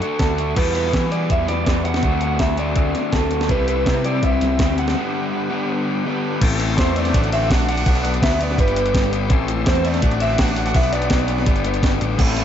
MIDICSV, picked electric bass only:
0, 0, Header, 1, 2, 480
1, 0, Start_track
1, 0, Tempo, 366077
1, 743, Time_signature, 4, 2, 24, 8
1, 7462, Tempo, 361011
1, 16441, End_track
2, 0, Start_track
2, 0, Title_t, "Picked electric bass"
2, 0, Program_c, 0, 34
2, 256, Note_on_c, 0, 38, 82
2, 709, Note_off_c, 0, 38, 0
2, 743, Note_on_c, 0, 40, 91
2, 1193, Note_off_c, 0, 40, 0
2, 1230, Note_on_c, 0, 52, 82
2, 1677, Note_off_c, 0, 52, 0
2, 1707, Note_on_c, 0, 40, 80
2, 1931, Note_off_c, 0, 40, 0
2, 1945, Note_on_c, 0, 40, 79
2, 2170, Note_off_c, 0, 40, 0
2, 2182, Note_on_c, 0, 40, 89
2, 2634, Note_off_c, 0, 40, 0
2, 2664, Note_on_c, 0, 38, 92
2, 3115, Note_off_c, 0, 38, 0
2, 3142, Note_on_c, 0, 38, 90
2, 3594, Note_off_c, 0, 38, 0
2, 3617, Note_on_c, 0, 38, 89
2, 3847, Note_off_c, 0, 38, 0
2, 4107, Note_on_c, 0, 38, 84
2, 4557, Note_off_c, 0, 38, 0
2, 4584, Note_on_c, 0, 36, 100
2, 5035, Note_off_c, 0, 36, 0
2, 5066, Note_on_c, 0, 48, 101
2, 5515, Note_off_c, 0, 48, 0
2, 5541, Note_on_c, 0, 36, 81
2, 5768, Note_off_c, 0, 36, 0
2, 5794, Note_on_c, 0, 36, 91
2, 6015, Note_off_c, 0, 36, 0
2, 6021, Note_on_c, 0, 38, 93
2, 6471, Note_off_c, 0, 38, 0
2, 8430, Note_on_c, 0, 33, 101
2, 8880, Note_off_c, 0, 33, 0
2, 8913, Note_on_c, 0, 40, 103
2, 9362, Note_off_c, 0, 40, 0
2, 9396, Note_on_c, 0, 33, 86
2, 9844, Note_off_c, 0, 33, 0
2, 9874, Note_on_c, 0, 34, 91
2, 10323, Note_off_c, 0, 34, 0
2, 10354, Note_on_c, 0, 35, 113
2, 10803, Note_off_c, 0, 35, 0
2, 10835, Note_on_c, 0, 38, 118
2, 11283, Note_off_c, 0, 38, 0
2, 11316, Note_on_c, 0, 31, 93
2, 11763, Note_off_c, 0, 31, 0
2, 11789, Note_on_c, 0, 31, 98
2, 12239, Note_off_c, 0, 31, 0
2, 12268, Note_on_c, 0, 33, 110
2, 12718, Note_off_c, 0, 33, 0
2, 12744, Note_on_c, 0, 40, 105
2, 13196, Note_off_c, 0, 40, 0
2, 13226, Note_on_c, 0, 33, 93
2, 13676, Note_off_c, 0, 33, 0
2, 13705, Note_on_c, 0, 33, 93
2, 14155, Note_off_c, 0, 33, 0
2, 14189, Note_on_c, 0, 35, 116
2, 14637, Note_off_c, 0, 35, 0
2, 14662, Note_on_c, 0, 35, 120
2, 15113, Note_off_c, 0, 35, 0
2, 15142, Note_on_c, 0, 31, 90
2, 15592, Note_off_c, 0, 31, 0
2, 15625, Note_on_c, 0, 31, 82
2, 15841, Note_off_c, 0, 31, 0
2, 15859, Note_on_c, 0, 33, 86
2, 16077, Note_off_c, 0, 33, 0
2, 16101, Note_on_c, 0, 33, 103
2, 16441, Note_off_c, 0, 33, 0
2, 16441, End_track
0, 0, End_of_file